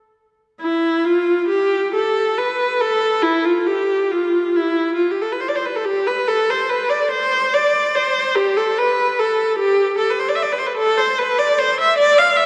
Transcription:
0, 0, Header, 1, 2, 480
1, 0, Start_track
1, 0, Key_signature, 0, "minor"
1, 0, Tempo, 1181102
1, 241, Tempo, 892857
1, 242, Time_signature, 6, 3, 24, 8
1, 1201, Tempo, 837989
1, 1681, Tempo, 874636
1, 3121, Tempo, 846262
1, 4081, Tempo, 817439
1, 6481, Tempo, 775194
1, 7000, End_track
2, 0, Start_track
2, 0, Title_t, "Viola"
2, 0, Program_c, 0, 41
2, 249, Note_on_c, 0, 64, 76
2, 469, Note_off_c, 0, 64, 0
2, 487, Note_on_c, 0, 65, 79
2, 720, Note_on_c, 0, 67, 77
2, 725, Note_off_c, 0, 65, 0
2, 960, Note_off_c, 0, 67, 0
2, 968, Note_on_c, 0, 69, 77
2, 1198, Note_off_c, 0, 69, 0
2, 1199, Note_on_c, 0, 71, 73
2, 1441, Note_off_c, 0, 71, 0
2, 1447, Note_on_c, 0, 69, 78
2, 1684, Note_off_c, 0, 69, 0
2, 1684, Note_on_c, 0, 64, 83
2, 1799, Note_off_c, 0, 64, 0
2, 1810, Note_on_c, 0, 65, 72
2, 1924, Note_off_c, 0, 65, 0
2, 1930, Note_on_c, 0, 67, 73
2, 2169, Note_off_c, 0, 67, 0
2, 2174, Note_on_c, 0, 65, 64
2, 2416, Note_off_c, 0, 65, 0
2, 2418, Note_on_c, 0, 64, 71
2, 2631, Note_off_c, 0, 64, 0
2, 2636, Note_on_c, 0, 65, 60
2, 2713, Note_off_c, 0, 65, 0
2, 2722, Note_on_c, 0, 67, 53
2, 2779, Note_on_c, 0, 69, 55
2, 2780, Note_off_c, 0, 67, 0
2, 2828, Note_off_c, 0, 69, 0
2, 2836, Note_on_c, 0, 71, 54
2, 2874, Note_off_c, 0, 71, 0
2, 2881, Note_on_c, 0, 72, 56
2, 2917, Note_off_c, 0, 72, 0
2, 2926, Note_on_c, 0, 74, 57
2, 2963, Note_off_c, 0, 74, 0
2, 2966, Note_on_c, 0, 72, 55
2, 3011, Note_off_c, 0, 72, 0
2, 3020, Note_on_c, 0, 71, 57
2, 3069, Note_off_c, 0, 71, 0
2, 3077, Note_on_c, 0, 69, 58
2, 3128, Note_on_c, 0, 67, 76
2, 3129, Note_off_c, 0, 69, 0
2, 3244, Note_off_c, 0, 67, 0
2, 3251, Note_on_c, 0, 71, 73
2, 3366, Note_off_c, 0, 71, 0
2, 3369, Note_on_c, 0, 69, 78
2, 3487, Note_off_c, 0, 69, 0
2, 3497, Note_on_c, 0, 72, 72
2, 3607, Note_on_c, 0, 71, 78
2, 3611, Note_off_c, 0, 72, 0
2, 3718, Note_on_c, 0, 74, 69
2, 3726, Note_off_c, 0, 71, 0
2, 3842, Note_off_c, 0, 74, 0
2, 3842, Note_on_c, 0, 72, 83
2, 4074, Note_off_c, 0, 72, 0
2, 4085, Note_on_c, 0, 74, 75
2, 4323, Note_off_c, 0, 74, 0
2, 4326, Note_on_c, 0, 72, 78
2, 4563, Note_on_c, 0, 67, 78
2, 4564, Note_off_c, 0, 72, 0
2, 4683, Note_off_c, 0, 67, 0
2, 4688, Note_on_c, 0, 69, 72
2, 4805, Note_off_c, 0, 69, 0
2, 4816, Note_on_c, 0, 71, 76
2, 5048, Note_off_c, 0, 71, 0
2, 5056, Note_on_c, 0, 69, 66
2, 5286, Note_on_c, 0, 67, 80
2, 5287, Note_off_c, 0, 69, 0
2, 5492, Note_off_c, 0, 67, 0
2, 5517, Note_on_c, 0, 69, 69
2, 5587, Note_off_c, 0, 69, 0
2, 5589, Note_on_c, 0, 71, 59
2, 5642, Note_on_c, 0, 72, 61
2, 5647, Note_off_c, 0, 71, 0
2, 5693, Note_off_c, 0, 72, 0
2, 5695, Note_on_c, 0, 74, 58
2, 5739, Note_off_c, 0, 74, 0
2, 5739, Note_on_c, 0, 76, 64
2, 5780, Note_on_c, 0, 74, 62
2, 5781, Note_off_c, 0, 76, 0
2, 5827, Note_off_c, 0, 74, 0
2, 5837, Note_on_c, 0, 71, 60
2, 5873, Note_on_c, 0, 72, 65
2, 5885, Note_off_c, 0, 71, 0
2, 5921, Note_on_c, 0, 71, 62
2, 5936, Note_off_c, 0, 72, 0
2, 5983, Note_on_c, 0, 69, 81
2, 5993, Note_off_c, 0, 71, 0
2, 6104, Note_on_c, 0, 72, 74
2, 6112, Note_off_c, 0, 69, 0
2, 6227, Note_on_c, 0, 71, 80
2, 6234, Note_off_c, 0, 72, 0
2, 6344, Note_on_c, 0, 74, 81
2, 6354, Note_off_c, 0, 71, 0
2, 6461, Note_on_c, 0, 72, 83
2, 6471, Note_off_c, 0, 74, 0
2, 6593, Note_off_c, 0, 72, 0
2, 6596, Note_on_c, 0, 76, 79
2, 6706, Note_on_c, 0, 74, 93
2, 6718, Note_off_c, 0, 76, 0
2, 6829, Note_on_c, 0, 77, 82
2, 6832, Note_off_c, 0, 74, 0
2, 6942, Note_on_c, 0, 76, 84
2, 6954, Note_off_c, 0, 77, 0
2, 7000, Note_off_c, 0, 76, 0
2, 7000, End_track
0, 0, End_of_file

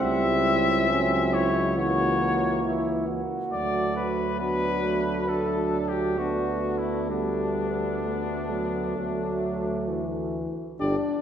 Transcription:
0, 0, Header, 1, 6, 480
1, 0, Start_track
1, 0, Tempo, 881057
1, 9, Time_signature, 4, 2, 24, 8
1, 3369, Tempo, 921659
1, 5990, End_track
2, 0, Start_track
2, 0, Title_t, "Trumpet"
2, 0, Program_c, 0, 56
2, 7, Note_on_c, 0, 76, 82
2, 729, Note_on_c, 0, 73, 65
2, 737, Note_off_c, 0, 76, 0
2, 966, Note_off_c, 0, 73, 0
2, 969, Note_on_c, 0, 73, 73
2, 1436, Note_off_c, 0, 73, 0
2, 1921, Note_on_c, 0, 74, 65
2, 2142, Note_off_c, 0, 74, 0
2, 2160, Note_on_c, 0, 71, 64
2, 2393, Note_off_c, 0, 71, 0
2, 2397, Note_on_c, 0, 71, 77
2, 2878, Note_on_c, 0, 69, 57
2, 2887, Note_off_c, 0, 71, 0
2, 3206, Note_on_c, 0, 67, 55
2, 3214, Note_off_c, 0, 69, 0
2, 3366, Note_on_c, 0, 66, 54
2, 3374, Note_off_c, 0, 67, 0
2, 3681, Note_on_c, 0, 64, 45
2, 3689, Note_off_c, 0, 66, 0
2, 3843, Note_off_c, 0, 64, 0
2, 3849, Note_on_c, 0, 62, 50
2, 5276, Note_off_c, 0, 62, 0
2, 5775, Note_on_c, 0, 74, 51
2, 5858, Note_off_c, 0, 74, 0
2, 5990, End_track
3, 0, Start_track
3, 0, Title_t, "Trombone"
3, 0, Program_c, 1, 57
3, 9, Note_on_c, 1, 64, 66
3, 486, Note_on_c, 1, 61, 58
3, 494, Note_off_c, 1, 64, 0
3, 727, Note_on_c, 1, 64, 66
3, 735, Note_off_c, 1, 61, 0
3, 963, Note_off_c, 1, 64, 0
3, 966, Note_on_c, 1, 66, 58
3, 1434, Note_off_c, 1, 66, 0
3, 1444, Note_on_c, 1, 64, 58
3, 1678, Note_off_c, 1, 64, 0
3, 1681, Note_on_c, 1, 66, 58
3, 2236, Note_off_c, 1, 66, 0
3, 2393, Note_on_c, 1, 62, 53
3, 2856, Note_off_c, 1, 62, 0
3, 2881, Note_on_c, 1, 57, 49
3, 3359, Note_off_c, 1, 57, 0
3, 3367, Note_on_c, 1, 59, 46
3, 3846, Note_on_c, 1, 57, 45
3, 3854, Note_off_c, 1, 59, 0
3, 5535, Note_off_c, 1, 57, 0
3, 5775, Note_on_c, 1, 50, 49
3, 5859, Note_off_c, 1, 50, 0
3, 5990, End_track
4, 0, Start_track
4, 0, Title_t, "Flugelhorn"
4, 0, Program_c, 2, 56
4, 0, Note_on_c, 2, 60, 52
4, 871, Note_off_c, 2, 60, 0
4, 964, Note_on_c, 2, 58, 50
4, 1754, Note_off_c, 2, 58, 0
4, 1922, Note_on_c, 2, 57, 44
4, 2400, Note_on_c, 2, 59, 41
4, 2408, Note_off_c, 2, 57, 0
4, 2641, Note_on_c, 2, 57, 40
4, 2650, Note_off_c, 2, 59, 0
4, 2882, Note_on_c, 2, 62, 41
4, 2890, Note_off_c, 2, 57, 0
4, 3368, Note_off_c, 2, 62, 0
4, 3371, Note_on_c, 2, 62, 42
4, 3836, Note_off_c, 2, 62, 0
4, 3848, Note_on_c, 2, 59, 40
4, 4817, Note_on_c, 2, 57, 34
4, 4825, Note_off_c, 2, 59, 0
4, 5603, Note_off_c, 2, 57, 0
4, 5771, Note_on_c, 2, 67, 44
4, 5854, Note_off_c, 2, 67, 0
4, 5990, End_track
5, 0, Start_track
5, 0, Title_t, "French horn"
5, 0, Program_c, 3, 60
5, 9, Note_on_c, 3, 55, 49
5, 487, Note_off_c, 3, 55, 0
5, 489, Note_on_c, 3, 54, 49
5, 967, Note_on_c, 3, 52, 51
5, 976, Note_off_c, 3, 54, 0
5, 1440, Note_off_c, 3, 52, 0
5, 1443, Note_on_c, 3, 52, 45
5, 1765, Note_off_c, 3, 52, 0
5, 1919, Note_on_c, 3, 54, 50
5, 3370, Note_on_c, 3, 57, 41
5, 3378, Note_off_c, 3, 54, 0
5, 3846, Note_on_c, 3, 55, 38
5, 3853, Note_off_c, 3, 57, 0
5, 4281, Note_off_c, 3, 55, 0
5, 4330, Note_on_c, 3, 57, 42
5, 4579, Note_on_c, 3, 54, 38
5, 4586, Note_off_c, 3, 57, 0
5, 4816, Note_off_c, 3, 54, 0
5, 4819, Note_on_c, 3, 54, 49
5, 5295, Note_on_c, 3, 52, 40
5, 5303, Note_off_c, 3, 54, 0
5, 5685, Note_off_c, 3, 52, 0
5, 5773, Note_on_c, 3, 62, 63
5, 5990, Note_off_c, 3, 62, 0
5, 5990, End_track
6, 0, Start_track
6, 0, Title_t, "Bass trombone"
6, 0, Program_c, 4, 57
6, 10, Note_on_c, 4, 37, 53
6, 1750, Note_off_c, 4, 37, 0
6, 1922, Note_on_c, 4, 38, 47
6, 4796, Note_off_c, 4, 38, 0
6, 4816, Note_on_c, 4, 38, 35
6, 5587, Note_off_c, 4, 38, 0
6, 5774, Note_on_c, 4, 31, 56
6, 5857, Note_off_c, 4, 31, 0
6, 5990, End_track
0, 0, End_of_file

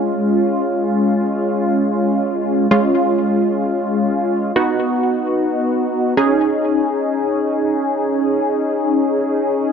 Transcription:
0, 0, Header, 1, 2, 480
1, 0, Start_track
1, 0, Tempo, 500000
1, 9333, End_track
2, 0, Start_track
2, 0, Title_t, "Analog polysynth"
2, 0, Program_c, 0, 90
2, 0, Note_on_c, 0, 56, 78
2, 0, Note_on_c, 0, 61, 71
2, 0, Note_on_c, 0, 65, 84
2, 2564, Note_off_c, 0, 56, 0
2, 2564, Note_off_c, 0, 61, 0
2, 2564, Note_off_c, 0, 65, 0
2, 2603, Note_on_c, 0, 56, 78
2, 2603, Note_on_c, 0, 61, 70
2, 2603, Note_on_c, 0, 65, 87
2, 4339, Note_off_c, 0, 56, 0
2, 4339, Note_off_c, 0, 65, 0
2, 4340, Note_off_c, 0, 61, 0
2, 4377, Note_on_c, 0, 59, 79
2, 4377, Note_on_c, 0, 63, 73
2, 4377, Note_on_c, 0, 66, 87
2, 5895, Note_off_c, 0, 66, 0
2, 5896, Note_off_c, 0, 59, 0
2, 5896, Note_off_c, 0, 63, 0
2, 5926, Note_on_c, 0, 61, 76
2, 5926, Note_on_c, 0, 63, 73
2, 5926, Note_on_c, 0, 68, 86
2, 9333, Note_off_c, 0, 61, 0
2, 9333, Note_off_c, 0, 63, 0
2, 9333, Note_off_c, 0, 68, 0
2, 9333, End_track
0, 0, End_of_file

